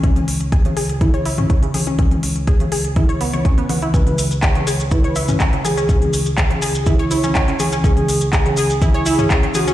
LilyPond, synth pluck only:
\new Staff \with { instrumentName = "Synth pluck" } { \time 4/4 \key e \major \tempo 4 = 123 cis'16 r8. gis'16 cis16 gis'16 r16 e'16 cis''16 e'16 cis'16 cis'16 cis16 gis'16 cis'16 | cis'16 r8. gis'16 cis16 gis'16 r16 e'16 cis''16 b16 cis''16 cis'16 b16 b16 e'16 | cis'16 r8. gis'16 cis16 gis'16 r16 e'16 cis''16 e'16 cis'16 cis'16 cis16 gis'16 cis'16 | cis'16 r8. gis'16 cis16 gis'16 r16 e'16 cis''16 e'16 cis'16 cis'16 cis16 gis'16 cis'16 |
cis'16 r8. gis'16 cis16 gis'16 r16 e'16 cis''16 e'16 cis'16 cis'16 cis16 gis'16 cis'16 | }